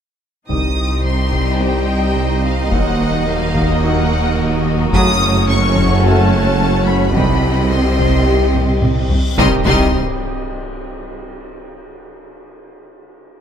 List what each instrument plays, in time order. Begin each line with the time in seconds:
0.49 double bass section C2, sub bass C2, cello section C2, tuba C2, synth pluck C3, trombone section D#3 G3, ambient pad G3 D#4 C5 D#5, french horn section C4 D#4, viola section C4 D#4, violin section G4 D#5 D#6, taiko
0.77 synth pluck G3
1.04 synth pluck G3, violin section C6
1.32 synth pluck C3, taiko
1.60 trombone section D#3 G3, french horn section C4 D#4, synth pluck C4, violin section G5
1.88 synth pluck G3
2.15 synth pluck C3
2.44 synth pluck G3, violin section F5
2.71 sub bass D#1, tuba D#2, cello section D#2, double bass section D#2, synth pluck D#3, trombone section D#3 F#3, ambient pad F#3 A#4, french horn section A#3 D#4, viola section A#3, violin section F#4 F#5, taiko
2.99 synth pluck A#3
3.27 synth pluck A#3, violin section F5
3.54 synth pluck D#3, taiko
3.70 violin section D#5
3.82 trombone section D#3 F#3, french horn section A#3 D#4, synth pluck D#4, violin section F#5
4.10 synth pluck A#3
4.39 synth pluck D#3
4.65 synth pluck A#3
4.93 double bass section F#1, sub bass F#1, tuba F#1, cello section F#2, trombone section C#3 F#3, synth pluck F#3, french horn section A3 F#4, viola section A3 C#4, ambient pad C#4 A4 F#5, violin section C#5 D#6, taiko
5.21 synth pluck C#4
5.49 synth pluck C#4, violin section C#6
5.76 synth pluck F#3, taiko
6.04 trombone section C#3 F#3, french horn section A3 F#4, synth pluck F#4, violin section A5
6.33 synth pluck C#4
6.61 synth pluck F#3
6.88 synth pluck C#4, violin section B5
7.15 tuba C2, sub bass C2, double bass section C2, cello section C3, synth pluck C3, trombone section C3 D#3, ambient pad G3 C4 G4 D#5, french horn section G3 G4, viola section G3 C4, violin section G4 D#5 B5, taiko, reverse cymbal
7.44 synth pluck G3
7.72 synth pluck G3, violin section C6
7.99 synth pluck C3, taiko
8.27 trombone section C3 D#3, french horn section G3 G4, synth pluck C4
8.54 synth pluck G3, taiko mid
8.82 synth pluck C3, taiko mid
9.10 synth pluck G3, taiko low
9.37 tuba C2, sub bass C2, double bass section C2, trombone section C3 D#3, cello section C3, french horn section G3 G4, viola section G3 D#4, violin section G4 D#5 C6, taiko, impact
9.65 sub bass C2, double bass section C2, tuba C2, cello section C3, viola section G3 D#4, violin section G4 D#5 C6, taiko